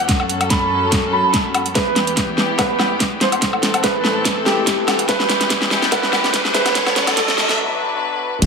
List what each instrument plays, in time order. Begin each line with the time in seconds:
Already playing: grand piano F#5
0.09 string section F#2 F#3 C#4 A4, kick, snare, closed hi-hat
0.20 low woodblock
0.29 closed hi-hat
0.41 closed hi-hat, low woodblock
0.50 grand piano B5, kick, snare, closed hi-hat
0.92 kick, snare, closed hi-hat
1.13 grand piano B5
1.34 kick, snare, closed hi-hat
1.54 closed hi-hat, low woodblock
1.66 closed hi-hat
1.75 string section E2 E3 B3 G4, grand piano B4, kick, snare, closed hi-hat, riser
1.96 snare, closed hi-hat
2.07 closed hi-hat
2.17 kick, snare, closed hi-hat
2.38 snare
2.59 grand piano B4, kick, snare, closed hi-hat, low woodblock
2.79 snare, low woodblock
3.00 kick, snare, closed hi-hat
3.21 grand piano C5, snare, closed hi-hat
3.32 closed hi-hat, low woodblock
3.42 string section A2 E3 C4 A4, kick, snare, closed hi-hat
3.53 low woodblock
3.63 snare, closed hi-hat
3.74 closed hi-hat, low woodblock
3.84 grand piano B4, kick, snare, closed hi-hat
4.04 snare
4.25 kick, snare, closed hi-hat
4.46 grand piano G4, snare
4.67 kick, snare, closed hi-hat
4.88 snare, closed hi-hat, low woodblock
4.99 closed hi-hat
5.09 string section E2 B3 G4, grand piano B4, kick, snare, closed hi-hat
5.20 snare
5.29 snare, closed hi-hat
5.41 snare, closed hi-hat
5.50 kick, snare, closed hi-hat
5.62 snare
5.71 snare
5.82 snare
5.92 grand piano B4, kick, snare, closed hi-hat, low woodblock
6.03 snare
6.13 snare, low woodblock
6.24 snare
6.34 kick, snare, closed hi-hat
6.45 snare
6.54 grand piano B4, snare, closed hi-hat
6.66 snare, closed hi-hat, low woodblock
6.75 string section F#2 F#3 C#4 A4, kick, snare, closed hi-hat
6.86 snare, low woodblock
6.96 snare, closed hi-hat
7.07 snare, closed hi-hat, low woodblock
7.17 grand piano A4, kick, snare, closed hi-hat
7.28 snare
7.38 snare
7.49 snare
7.59 string section B2 D4 B4
8.42 wobble bass E1, string section E3 E4 G4 B4, kick, closed hi-hat, crash, impact